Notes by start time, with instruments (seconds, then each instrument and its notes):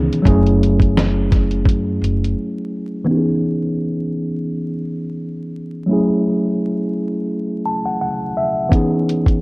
Already playing: tine electric piano D#3 E3 B3 C#4 D#4 G#4
0.13 closed hi-hat
0.22 upright bass F#1, tine electric piano F#3 A3 C#4, kick
0.27 tine electric piano E4 G#4, closed hi-hat
0.46 closed hi-hat
0.63 closed hi-hat
0.80 kick, closed hi-hat
0.97 snare, closed hi-hat
1.32 kick, snare, closed hi-hat
1.51 closed hi-hat
1.66 upright bass F#2, kick, closed hi-hat
2.02 upright bass F#1, closed hi-hat
2.24 closed hi-hat
3.04 tine electric piano E3 B3 C#4
3.09 tine electric piano D#4 G4
3.17 tine electric piano G#4
5.86 tine electric piano F#3 A3 C#4
5.91 tine electric piano E4 G#4
7.66 tine electric piano A5
7.86 tine electric piano F#5
8.02 tine electric piano F#5
8.37 tine electric piano E5
8.69 tine electric piano E3 B3 C#4, kick
8.73 tine electric piano D#4 G#4, closed hi-hat
9.09 closed hi-hat
9.26 kick, closed hi-hat